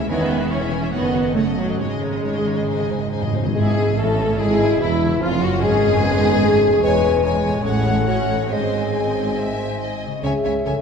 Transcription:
Already playing: C#3 G#3 C#4
0.08 E1 E2 D#3 B3 E4 C#5 G#5
0.20 G#4 E5
0.29 E3 E4 C#5 G#5
0.40 G#4 E5
0.50 E3 C#4 E4 C#5 G#5
0.60 G#4 E5
0.70 E3 E4 C#5 G#5
0.81 G#4 E5
0.92 F#1 F#2 D#3 B3 F#4 C#5 F#5
1.03 A4 D#5
1.12 C#3 F#4 C#5 F#5
1.24 A4 D#5
1.34 C#3 A3 C#4 F#4 C#5 F#5
1.46 A4 D#5
1.56 A2 C#3 F#3 F#4 C#5 F#5
1.68 A4 D#5
1.78 G#1 G#2 C#3 G#3 D#4 C#5
1.90 G#4 D#5
2.01 D#3 D#4 C#5
2.12 G#4 D#5
2.23 C#4 D#4 C#5
2.34 G#4 D#5
2.45 D#3 D#4 C#5
2.56 G#4 D#5
2.66 G#2 D#4 C5 G#5
2.75 G#2 G#4 D#5
2.83 G#2
2.89 G#2 D#3 D#4 C5 G#5
2.99 G#2 G#4 D#5
3.07 G#2 D#4 C5
3.11 G#2 C4 G#5
3.22 G#2 G#4 D#5
3.31 G#2 D#3 D#4 C5 G#5
3.37 G#2 C#3
3.41 C#4 G#4 D#5
3.46 G#2 E4
3.50 G#4
3.55 G#1 G#2 G#3 E4 G#4
3.97 A1 A2 A3 C#4 A4
4.38 G#1 G#2 G#3 E4 G#4
4.80 E1 E2 E3 E4
5.03 C#3
5.07 C#4
5.12 F4
5.16 B4
5.21 F1 F2 F3 F4
5.41 F#1 F#2 F#3 F#4
5.61 G#1 G#2 G#3 C#4 G#4
5.84 F#2
5.89 C#4
5.93 F#4
5.98 A4
6.02 B3
6.44 A3
6.66 E2
6.70 C#4
6.75 G#4
6.79 B4 C#5
6.83 E1 E2 G#3 C#5 G#5
7.24 C#5 G#5
7.48 A2
7.52 C#4
7.57 F#4
7.61 C#5
7.66 A1 A2 C#4 A4 F#5
8.07 C#4 F#4 C#5 F#5
8.30 G#2 A4
8.38 D#4
8.42 G#4
8.47 C5
8.51 G#1 G#2 C4 G#4 C5 D#5 G#5
8.94 D#5
9.37 C4 E5
9.80 D#5
10.06 C#3
10.10 E4
10.15 G#4
10.19 C#4 G#4 C#5 E5
10.24 C#2 C#3 E5 G#5
10.44 C#2 C#3 C#5 E5 G#5
10.65 C#2 C#3 A4 C#5 E5 G#5

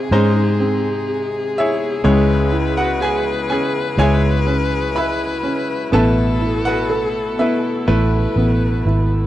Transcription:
Already playing: G#1 G#2 C3 G#3 C4 D#4 G#4 C5
0.11 G#2 G#3 C#4 D#4 C5
0.36 D#4
0.60 C4
1.58 E4 G#4 C#5 E5
2.04 C#2 C#3 G#3 E4 B4 C#5
2.52 E4
2.77 F#4 F#5
3.01 G#4 G#5
3.50 C#4 G#4 G#5
3.97 C#2 F#3 G#3 E4 G#4 C#5 E5 G#5
4.46 C#4
4.95 E4 B4 E5 B5
5.43 C#4
5.92 A1 B2 A3 B3 E4 A4 B4 E5 A5
6.41 E4
6.65 F#4 B4 F#5
6.90 A4
7.39 B3 E4 B4 E5
7.87 A1 A3 E4 B4
8.36 A1 B3
8.85 G#1 E4

